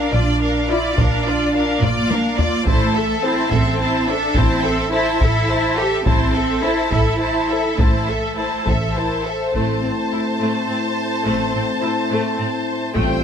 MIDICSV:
0, 0, Header, 1, 9, 480
1, 0, Start_track
1, 0, Tempo, 565504
1, 831, Time_signature, 6, 3, 24, 8
1, 4665, Tempo, 579151
1, 8025, Tempo, 568182
1, 11141, End_track
2, 0, Start_track
2, 0, Title_t, "Violin section"
2, 0, Program_c, 0, 48
2, 0, Note_on_c, 0, 77, 39
2, 101, Note_off_c, 0, 77, 0
2, 102, Note_on_c, 0, 74, 42
2, 347, Note_off_c, 0, 74, 0
2, 349, Note_on_c, 0, 77, 36
2, 573, Note_off_c, 0, 77, 0
2, 584, Note_on_c, 0, 74, 38
2, 821, Note_on_c, 0, 77, 40
2, 828, Note_off_c, 0, 74, 0
2, 1058, Note_on_c, 0, 74, 40
2, 1066, Note_off_c, 0, 77, 0
2, 1295, Note_on_c, 0, 77, 46
2, 1304, Note_off_c, 0, 74, 0
2, 1525, Note_off_c, 0, 77, 0
2, 1544, Note_on_c, 0, 74, 50
2, 1781, Note_on_c, 0, 77, 44
2, 1787, Note_off_c, 0, 74, 0
2, 2022, Note_on_c, 0, 74, 41
2, 2025, Note_off_c, 0, 77, 0
2, 2258, Note_on_c, 0, 81, 45
2, 2264, Note_off_c, 0, 74, 0
2, 2484, Note_off_c, 0, 81, 0
2, 2500, Note_on_c, 0, 76, 46
2, 2735, Note_on_c, 0, 81, 51
2, 2742, Note_off_c, 0, 76, 0
2, 2977, Note_on_c, 0, 76, 51
2, 2980, Note_off_c, 0, 81, 0
2, 3216, Note_on_c, 0, 81, 44
2, 3221, Note_off_c, 0, 76, 0
2, 3443, Note_off_c, 0, 81, 0
2, 3459, Note_on_c, 0, 76, 48
2, 3695, Note_on_c, 0, 81, 51
2, 3700, Note_off_c, 0, 76, 0
2, 3928, Note_on_c, 0, 76, 50
2, 3939, Note_off_c, 0, 81, 0
2, 4173, Note_on_c, 0, 81, 48
2, 4175, Note_off_c, 0, 76, 0
2, 4401, Note_off_c, 0, 81, 0
2, 4416, Note_on_c, 0, 76, 50
2, 4650, Note_on_c, 0, 81, 46
2, 4660, Note_off_c, 0, 76, 0
2, 4892, Note_on_c, 0, 76, 48
2, 4893, Note_off_c, 0, 81, 0
2, 5133, Note_off_c, 0, 76, 0
2, 5135, Note_on_c, 0, 81, 43
2, 5356, Note_off_c, 0, 81, 0
2, 5365, Note_on_c, 0, 76, 41
2, 5606, Note_off_c, 0, 76, 0
2, 5607, Note_on_c, 0, 81, 43
2, 5842, Note_on_c, 0, 76, 43
2, 5847, Note_off_c, 0, 81, 0
2, 6080, Note_on_c, 0, 81, 41
2, 6084, Note_off_c, 0, 76, 0
2, 6308, Note_off_c, 0, 81, 0
2, 6327, Note_on_c, 0, 76, 40
2, 6567, Note_on_c, 0, 81, 34
2, 6570, Note_off_c, 0, 76, 0
2, 6808, Note_on_c, 0, 76, 34
2, 6812, Note_off_c, 0, 81, 0
2, 7047, Note_on_c, 0, 81, 38
2, 7054, Note_off_c, 0, 76, 0
2, 7277, Note_off_c, 0, 81, 0
2, 7298, Note_on_c, 0, 76, 37
2, 7535, Note_on_c, 0, 81, 33
2, 7540, Note_off_c, 0, 76, 0
2, 7775, Note_on_c, 0, 76, 30
2, 7780, Note_off_c, 0, 81, 0
2, 8016, Note_on_c, 0, 81, 36
2, 8019, Note_off_c, 0, 76, 0
2, 10865, Note_off_c, 0, 81, 0
2, 10899, Note_on_c, 0, 79, 46
2, 11141, Note_off_c, 0, 79, 0
2, 11141, End_track
3, 0, Start_track
3, 0, Title_t, "Violin section"
3, 0, Program_c, 1, 48
3, 0, Note_on_c, 1, 70, 39
3, 107, Note_off_c, 1, 70, 0
3, 112, Note_on_c, 1, 74, 44
3, 351, Note_off_c, 1, 74, 0
3, 353, Note_on_c, 1, 70, 39
3, 576, Note_off_c, 1, 70, 0
3, 596, Note_on_c, 1, 74, 42
3, 834, Note_off_c, 1, 74, 0
3, 849, Note_on_c, 1, 70, 50
3, 1080, Note_off_c, 1, 70, 0
3, 1085, Note_on_c, 1, 74, 42
3, 1317, Note_off_c, 1, 74, 0
3, 1326, Note_on_c, 1, 70, 42
3, 1541, Note_off_c, 1, 70, 0
3, 1562, Note_on_c, 1, 74, 51
3, 1796, Note_off_c, 1, 74, 0
3, 1799, Note_on_c, 1, 70, 44
3, 2034, Note_off_c, 1, 70, 0
3, 2035, Note_on_c, 1, 74, 47
3, 2271, Note_off_c, 1, 74, 0
3, 2274, Note_on_c, 1, 72, 56
3, 2493, Note_off_c, 1, 72, 0
3, 2509, Note_on_c, 1, 69, 47
3, 2747, Note_off_c, 1, 69, 0
3, 2758, Note_on_c, 1, 72, 50
3, 2986, Note_on_c, 1, 69, 55
3, 2991, Note_off_c, 1, 72, 0
3, 3225, Note_off_c, 1, 69, 0
3, 3232, Note_on_c, 1, 72, 47
3, 3451, Note_off_c, 1, 72, 0
3, 3472, Note_on_c, 1, 69, 53
3, 3707, Note_off_c, 1, 69, 0
3, 3713, Note_on_c, 1, 72, 59
3, 3947, Note_on_c, 1, 69, 52
3, 3948, Note_off_c, 1, 72, 0
3, 4185, Note_off_c, 1, 69, 0
3, 4190, Note_on_c, 1, 72, 53
3, 4410, Note_off_c, 1, 72, 0
3, 4428, Note_on_c, 1, 69, 60
3, 4664, Note_on_c, 1, 72, 52
3, 4666, Note_off_c, 1, 69, 0
3, 4900, Note_off_c, 1, 72, 0
3, 4907, Note_on_c, 1, 69, 50
3, 5141, Note_off_c, 1, 69, 0
3, 5150, Note_on_c, 1, 72, 53
3, 5364, Note_off_c, 1, 72, 0
3, 5376, Note_on_c, 1, 69, 46
3, 5608, Note_on_c, 1, 72, 47
3, 5611, Note_off_c, 1, 69, 0
3, 5847, Note_off_c, 1, 72, 0
3, 5849, Note_on_c, 1, 69, 48
3, 6081, Note_on_c, 1, 72, 38
3, 6088, Note_off_c, 1, 69, 0
3, 6308, Note_off_c, 1, 72, 0
3, 6326, Note_on_c, 1, 69, 38
3, 6568, Note_on_c, 1, 72, 41
3, 6569, Note_off_c, 1, 69, 0
3, 6812, Note_off_c, 1, 72, 0
3, 6815, Note_on_c, 1, 69, 37
3, 7057, Note_off_c, 1, 69, 0
3, 7057, Note_on_c, 1, 72, 34
3, 7282, Note_off_c, 1, 72, 0
3, 7298, Note_on_c, 1, 69, 39
3, 7536, Note_on_c, 1, 72, 34
3, 7540, Note_off_c, 1, 69, 0
3, 7781, Note_off_c, 1, 72, 0
3, 7789, Note_on_c, 1, 69, 36
3, 8018, Note_on_c, 1, 72, 39
3, 8027, Note_off_c, 1, 69, 0
3, 10866, Note_off_c, 1, 72, 0
3, 10910, Note_on_c, 1, 72, 60
3, 11141, Note_off_c, 1, 72, 0
3, 11141, End_track
4, 0, Start_track
4, 0, Title_t, "French horn section"
4, 0, Program_c, 2, 60
4, 581, Note_on_c, 2, 65, 52
4, 581, Note_on_c, 2, 74, 53
4, 668, Note_off_c, 2, 65, 0
4, 668, Note_off_c, 2, 74, 0
4, 1314, Note_on_c, 2, 74, 46
4, 1316, Note_on_c, 2, 65, 48
4, 1396, Note_off_c, 2, 74, 0
4, 1398, Note_off_c, 2, 65, 0
4, 2021, Note_on_c, 2, 74, 53
4, 2026, Note_on_c, 2, 65, 54
4, 2107, Note_off_c, 2, 74, 0
4, 2110, Note_off_c, 2, 65, 0
4, 2746, Note_on_c, 2, 72, 56
4, 2750, Note_on_c, 2, 69, 58
4, 2829, Note_off_c, 2, 72, 0
4, 2832, Note_off_c, 2, 69, 0
4, 3458, Note_on_c, 2, 69, 57
4, 3458, Note_on_c, 2, 72, 56
4, 3543, Note_off_c, 2, 72, 0
4, 3544, Note_off_c, 2, 69, 0
4, 4174, Note_on_c, 2, 72, 58
4, 4180, Note_on_c, 2, 69, 52
4, 4261, Note_off_c, 2, 72, 0
4, 4264, Note_off_c, 2, 69, 0
4, 4887, Note_on_c, 2, 69, 56
4, 4887, Note_on_c, 2, 72, 59
4, 4974, Note_off_c, 2, 69, 0
4, 4974, Note_off_c, 2, 72, 0
4, 5612, Note_on_c, 2, 69, 54
4, 5616, Note_on_c, 2, 72, 52
4, 5695, Note_off_c, 2, 69, 0
4, 5697, Note_off_c, 2, 72, 0
4, 6331, Note_on_c, 2, 69, 48
4, 6338, Note_on_c, 2, 72, 46
4, 6415, Note_off_c, 2, 69, 0
4, 6419, Note_off_c, 2, 72, 0
4, 7052, Note_on_c, 2, 69, 39
4, 7059, Note_on_c, 2, 72, 41
4, 7138, Note_off_c, 2, 69, 0
4, 7143, Note_off_c, 2, 72, 0
4, 7299, Note_on_c, 2, 72, 43
4, 7524, Note_off_c, 2, 72, 0
4, 7552, Note_on_c, 2, 70, 40
4, 7789, Note_off_c, 2, 70, 0
4, 7800, Note_on_c, 2, 72, 41
4, 8027, Note_off_c, 2, 72, 0
4, 8041, Note_on_c, 2, 64, 34
4, 8044, Note_on_c, 2, 60, 35
4, 10878, Note_off_c, 2, 64, 0
4, 10879, Note_off_c, 2, 60, 0
4, 10903, Note_on_c, 2, 60, 51
4, 10903, Note_on_c, 2, 65, 51
4, 11141, Note_off_c, 2, 60, 0
4, 11141, Note_off_c, 2, 65, 0
4, 11141, End_track
5, 0, Start_track
5, 0, Title_t, "Viola section"
5, 0, Program_c, 3, 48
5, 0, Note_on_c, 3, 62, 39
5, 110, Note_off_c, 3, 62, 0
5, 113, Note_on_c, 3, 65, 39
5, 350, Note_on_c, 3, 62, 39
5, 352, Note_off_c, 3, 65, 0
5, 574, Note_off_c, 3, 62, 0
5, 594, Note_on_c, 3, 65, 41
5, 833, Note_off_c, 3, 65, 0
5, 834, Note_on_c, 3, 62, 48
5, 1072, Note_off_c, 3, 62, 0
5, 1073, Note_on_c, 3, 65, 49
5, 1311, Note_off_c, 3, 65, 0
5, 1312, Note_on_c, 3, 62, 43
5, 1534, Note_off_c, 3, 62, 0
5, 1553, Note_on_c, 3, 65, 43
5, 1791, Note_off_c, 3, 65, 0
5, 1798, Note_on_c, 3, 62, 44
5, 2033, Note_off_c, 3, 62, 0
5, 2041, Note_on_c, 3, 65, 45
5, 2274, Note_off_c, 3, 65, 0
5, 2281, Note_on_c, 3, 64, 52
5, 2496, Note_off_c, 3, 64, 0
5, 2515, Note_on_c, 3, 69, 55
5, 2750, Note_off_c, 3, 69, 0
5, 2762, Note_on_c, 3, 64, 48
5, 2993, Note_off_c, 3, 64, 0
5, 2994, Note_on_c, 3, 69, 49
5, 3229, Note_off_c, 3, 69, 0
5, 3235, Note_on_c, 3, 64, 48
5, 3452, Note_off_c, 3, 64, 0
5, 3477, Note_on_c, 3, 69, 49
5, 3708, Note_on_c, 3, 64, 57
5, 3710, Note_off_c, 3, 69, 0
5, 3945, Note_off_c, 3, 64, 0
5, 3949, Note_on_c, 3, 69, 56
5, 4186, Note_off_c, 3, 69, 0
5, 4193, Note_on_c, 3, 64, 47
5, 4411, Note_off_c, 3, 64, 0
5, 4436, Note_on_c, 3, 69, 49
5, 4670, Note_off_c, 3, 69, 0
5, 4671, Note_on_c, 3, 64, 49
5, 4904, Note_off_c, 3, 64, 0
5, 4904, Note_on_c, 3, 69, 48
5, 5134, Note_on_c, 3, 64, 49
5, 5139, Note_off_c, 3, 69, 0
5, 5356, Note_off_c, 3, 64, 0
5, 5372, Note_on_c, 3, 69, 49
5, 5610, Note_off_c, 3, 69, 0
5, 5612, Note_on_c, 3, 64, 44
5, 5841, Note_on_c, 3, 69, 41
5, 5849, Note_off_c, 3, 64, 0
5, 6082, Note_on_c, 3, 64, 42
5, 6084, Note_off_c, 3, 69, 0
5, 6308, Note_off_c, 3, 64, 0
5, 6321, Note_on_c, 3, 69, 38
5, 6567, Note_off_c, 3, 69, 0
5, 6569, Note_on_c, 3, 64, 39
5, 6809, Note_on_c, 3, 69, 41
5, 6813, Note_off_c, 3, 64, 0
5, 7049, Note_on_c, 3, 64, 35
5, 7054, Note_off_c, 3, 69, 0
5, 7278, Note_off_c, 3, 64, 0
5, 7298, Note_on_c, 3, 69, 32
5, 7540, Note_off_c, 3, 69, 0
5, 7541, Note_on_c, 3, 64, 34
5, 7775, Note_on_c, 3, 69, 33
5, 7783, Note_off_c, 3, 64, 0
5, 8020, Note_off_c, 3, 69, 0
5, 8025, Note_on_c, 3, 57, 42
5, 8250, Note_off_c, 3, 57, 0
5, 8260, Note_on_c, 3, 60, 27
5, 8328, Note_off_c, 3, 60, 0
5, 8505, Note_on_c, 3, 64, 28
5, 8573, Note_off_c, 3, 64, 0
5, 8739, Note_on_c, 3, 57, 38
5, 8966, Note_off_c, 3, 57, 0
5, 8983, Note_on_c, 3, 60, 32
5, 9050, Note_off_c, 3, 60, 0
5, 9460, Note_on_c, 3, 57, 46
5, 9686, Note_off_c, 3, 57, 0
5, 9706, Note_on_c, 3, 60, 37
5, 9774, Note_off_c, 3, 60, 0
5, 9943, Note_on_c, 3, 64, 40
5, 10010, Note_off_c, 3, 64, 0
5, 10188, Note_on_c, 3, 57, 46
5, 10408, Note_off_c, 3, 57, 0
5, 10415, Note_on_c, 3, 60, 39
5, 10482, Note_off_c, 3, 60, 0
5, 10896, Note_on_c, 3, 57, 56
5, 11123, Note_off_c, 3, 57, 0
5, 11141, End_track
6, 0, Start_track
6, 0, Title_t, "Cello section"
6, 0, Program_c, 4, 48
6, 0, Note_on_c, 4, 62, 60
6, 96, Note_off_c, 4, 62, 0
6, 106, Note_on_c, 4, 62, 55
6, 581, Note_off_c, 4, 62, 0
6, 593, Note_on_c, 4, 64, 56
6, 832, Note_off_c, 4, 64, 0
6, 836, Note_on_c, 4, 62, 60
6, 1538, Note_off_c, 4, 62, 0
6, 1555, Note_on_c, 4, 58, 59
6, 2269, Note_on_c, 4, 57, 73
6, 2271, Note_off_c, 4, 58, 0
6, 2736, Note_off_c, 4, 57, 0
6, 2749, Note_on_c, 4, 60, 68
6, 2975, Note_off_c, 4, 60, 0
6, 2985, Note_on_c, 4, 60, 72
6, 3454, Note_off_c, 4, 60, 0
6, 3469, Note_on_c, 4, 62, 70
6, 3704, Note_on_c, 4, 60, 82
6, 3706, Note_off_c, 4, 62, 0
6, 4183, Note_off_c, 4, 60, 0
6, 4184, Note_on_c, 4, 64, 79
6, 4419, Note_off_c, 4, 64, 0
6, 4428, Note_on_c, 4, 64, 78
6, 4893, Note_off_c, 4, 64, 0
6, 4902, Note_on_c, 4, 67, 70
6, 5136, Note_on_c, 4, 60, 72
6, 5138, Note_off_c, 4, 67, 0
6, 5601, Note_off_c, 4, 60, 0
6, 5603, Note_on_c, 4, 64, 70
6, 5833, Note_off_c, 4, 64, 0
6, 5843, Note_on_c, 4, 64, 62
6, 6553, Note_off_c, 4, 64, 0
6, 6569, Note_on_c, 4, 57, 53
6, 7298, Note_off_c, 4, 57, 0
6, 8026, Note_on_c, 4, 45, 39
6, 8094, Note_off_c, 4, 45, 0
6, 8272, Note_on_c, 4, 45, 29
6, 8340, Note_off_c, 4, 45, 0
6, 8510, Note_on_c, 4, 45, 32
6, 8578, Note_off_c, 4, 45, 0
6, 8752, Note_on_c, 4, 45, 40
6, 8820, Note_off_c, 4, 45, 0
6, 8988, Note_on_c, 4, 45, 30
6, 9056, Note_off_c, 4, 45, 0
6, 9468, Note_on_c, 4, 45, 42
6, 9536, Note_off_c, 4, 45, 0
6, 9715, Note_on_c, 4, 45, 39
6, 9782, Note_off_c, 4, 45, 0
6, 9947, Note_on_c, 4, 45, 36
6, 10014, Note_off_c, 4, 45, 0
6, 10187, Note_on_c, 4, 45, 53
6, 10255, Note_off_c, 4, 45, 0
6, 10424, Note_on_c, 4, 45, 44
6, 10492, Note_off_c, 4, 45, 0
6, 10904, Note_on_c, 4, 45, 58
6, 10971, Note_off_c, 4, 45, 0
6, 11141, End_track
7, 0, Start_track
7, 0, Title_t, "Trombone section"
7, 0, Program_c, 5, 61
7, 8018, Note_on_c, 5, 57, 36
7, 8019, Note_on_c, 5, 45, 38
7, 10866, Note_off_c, 5, 57, 0
7, 10867, Note_off_c, 5, 45, 0
7, 10895, Note_on_c, 5, 45, 51
7, 10895, Note_on_c, 5, 55, 52
7, 11141, Note_off_c, 5, 45, 0
7, 11141, Note_off_c, 5, 55, 0
7, 11141, End_track
8, 0, Start_track
8, 0, Title_t, "Double bass section"
8, 0, Program_c, 6, 48
8, 111, Note_on_c, 6, 34, 53
8, 728, Note_off_c, 6, 34, 0
8, 835, Note_on_c, 6, 34, 50
8, 1446, Note_off_c, 6, 34, 0
8, 1552, Note_on_c, 6, 34, 57
8, 2163, Note_off_c, 6, 34, 0
8, 2266, Note_on_c, 6, 33, 61
8, 2878, Note_off_c, 6, 33, 0
8, 2987, Note_on_c, 6, 33, 64
8, 3598, Note_off_c, 6, 33, 0
8, 3702, Note_on_c, 6, 33, 61
8, 4316, Note_off_c, 6, 33, 0
8, 4420, Note_on_c, 6, 33, 65
8, 5032, Note_off_c, 6, 33, 0
8, 5137, Note_on_c, 6, 33, 67
8, 5744, Note_off_c, 6, 33, 0
8, 5843, Note_on_c, 6, 33, 57
8, 6462, Note_off_c, 6, 33, 0
8, 6567, Note_on_c, 6, 33, 47
8, 7191, Note_off_c, 6, 33, 0
8, 7295, Note_on_c, 6, 33, 50
8, 7917, Note_off_c, 6, 33, 0
8, 8024, Note_on_c, 6, 33, 36
8, 8250, Note_off_c, 6, 33, 0
8, 9468, Note_on_c, 6, 33, 42
8, 9690, Note_off_c, 6, 33, 0
8, 10905, Note_on_c, 6, 33, 53
8, 11128, Note_off_c, 6, 33, 0
8, 11141, End_track
9, 0, Start_track
9, 0, Title_t, "Taiko and cinematic ensemble drums"
9, 832, Note_on_c, 9, 41, 77
9, 917, Note_off_c, 9, 41, 0
9, 1548, Note_on_c, 9, 45, 63
9, 1633, Note_off_c, 9, 45, 0
9, 1788, Note_on_c, 9, 48, 72
9, 1873, Note_off_c, 9, 48, 0
9, 2028, Note_on_c, 9, 43, 79
9, 2113, Note_off_c, 9, 43, 0
9, 2267, Note_on_c, 9, 41, 79
9, 2352, Note_off_c, 9, 41, 0
9, 2984, Note_on_c, 9, 41, 74
9, 3069, Note_off_c, 9, 41, 0
9, 3703, Note_on_c, 9, 41, 78
9, 3788, Note_off_c, 9, 41, 0
9, 4422, Note_on_c, 9, 41, 67
9, 4507, Note_off_c, 9, 41, 0
9, 5134, Note_on_c, 9, 41, 85
9, 5217, Note_off_c, 9, 41, 0
9, 5845, Note_on_c, 9, 41, 62
9, 5928, Note_off_c, 9, 41, 0
9, 6566, Note_on_c, 9, 41, 75
9, 6649, Note_off_c, 9, 41, 0
9, 7295, Note_on_c, 9, 41, 58
9, 7378, Note_off_c, 9, 41, 0
9, 8022, Note_on_c, 9, 41, 34
9, 8107, Note_off_c, 9, 41, 0
9, 10905, Note_on_c, 9, 41, 48
9, 10990, Note_off_c, 9, 41, 0
9, 11141, End_track
0, 0, End_of_file